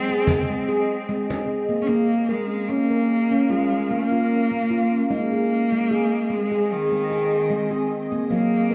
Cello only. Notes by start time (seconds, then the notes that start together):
Already playing: C4
1.82 C#4
1.88 A#3
2.30 G#3
2.70 A#3
3.50 G#3
3.91 A#3
5.10 A#3
6.34 G#3
6.73 D#3
8.33 A#3